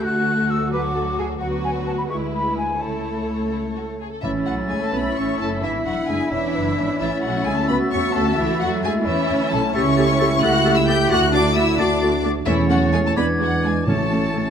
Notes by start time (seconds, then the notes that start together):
Already playing: A3
0.03 D2 F#4 A4 F#6
0.50 E6
0.70 F#3 F#4 A4 B4 D6
0.96 A4
1.19 G#4
1.40 D2 F#3 B3 F#4 B4 F#5
1.64 G#5
1.87 A5
1.98 B5
2.08 D2 G#3 E4 B4 C#6
2.34 B5
2.57 G#5
2.79 C#2 A3 E4 A4 C#5 A5
3.52 E4
3.77 F#4
4.00 G#4
4.12 A4
4.22 A1 A2 E3 A3 C#4 E4 E5 A6
4.46 B1 F#3 F#4 F#5
4.69 C#2 G#3 G#4 G#5
4.81 A3 A4 A5
4.92 B1 B3 C#4 E4 B4 B5
5.16 A1 C#4 C#5 C#6
5.39 F#1 A3 A4 A5
5.62 G#1 E3 B3 D4 E4 E5 B6
5.85 E1 F#3 F#4 F#5
6.07 F#1 G#3 G#4 G#5
6.31 E1 E3 C#4 D4 E4 E5
6.55 F#1 B3
6.78 G#1 C#4
6.99 A1 E3 A3 C#4 E4 E5 A6
7.23 B1 F#3 F#4 F#5
7.45 D2 G#3 G#4 G#5
7.56 A3 A4 A5
7.67 C#2 B3 F#4 B4 B5
7.91 E2 C#4 C#5 C#6
8.14 D2 A3 A4 A5
8.37 C#2 E3 A3 E4 E5
8.60 E2 F#3 F#4 F#5
8.82 D2 G#3 G#4 G#5
9.06 E2 E3 C#4 E4 E5
9.29 D2
9.51 B1 A3 A4 A5
9.74 C#2 A3 C#4 E4 G4 C#5 E5 C#6 A6
9.97 A3 G4 E5 A6
10.19 A3 G4 E5 A6
10.41 C#2 A3 F#4 G4 E5 F#5 F#6 A6
10.65 A3 G4 E5 A6
10.76 E4 E5 E6
10.87 A3 G4 E5 G5 G6 A6
11.10 D2 A3 F#4 D5 F#5 F#6 A6
11.33 A3 D4 F#4 D5 D6 A6
11.55 A3 E4 F#4 D5 E5 E6 A6
11.79 D2 A3 D4 F#4 D5 D6 A6
12.01 A3 F#4 D5 A6
12.23 A3 F#4 D5 A6
12.46 E2 E3 A3 C#4 E4 C#5 E5 A6
12.70 F#3 A3 C#4 F#4 F#5
12.93 G#3 A3 C#4 G#4 G#5
13.05 A3 A4 A5
13.16 E2 G#3 B3 D4 E4 B4 D5 B5 G#6
13.39 F#3 G#3 D4 F#4 F#5
13.63 G#3 D4 G#4 G#5
13.86 A1 A2 A3 C#4 E4 A4 C#5 A5 A6
14.12 A3 C#4
14.37 A3 C#4